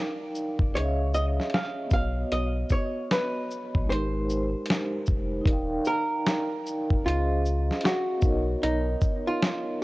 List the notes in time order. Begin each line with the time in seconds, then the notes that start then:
Already playing: D#4 A#4 D5 F5 G5
0.35 shaker
0.59 F1, kick
0.71 C#2 C#4 G#4 C#5
0.75 C#5 D#5 E5, closed hi-hat
0.83 F5
1.14 D#5, shaker
1.40 snare
1.50 closed hi-hat
1.54 F5, snare
1.86 B3 F#4
1.91 B1 B4 F5, kick, shaker
1.95 C#5 D#5
2.32 B1 D#5, closed hi-hat
2.70 C#5, kick, shaker
3.11 B4, snare, closed hi-hat
3.51 shaker
3.75 A#1, kick
3.83 G#3 D#4
3.89 G#1 G4 A#4 C5, closed hi-hat
3.95 C5
4.30 shaker
4.66 closed hi-hat
4.70 snare
5.06 F1, kick, shaker
5.41 D#4 A#4
5.46 D#1 D5, kick, closed hi-hat
5.50 F5 G5
5.85 A#4, shaker
6.26 snare, closed hi-hat
6.66 shaker
6.90 F1, kick
7.02 C#2 C#4 G#4
7.06 F4 D#5 F5, closed hi-hat
7.45 shaker
7.71 snare
7.81 closed hi-hat
7.85 F#4, snare
8.17 B3 D#4
8.22 B1 A#4, kick, shaker
8.26 C#5 D#5
8.63 B1 D#4, closed hi-hat
9.01 kick, shaker
9.27 F4
9.42 snare, closed hi-hat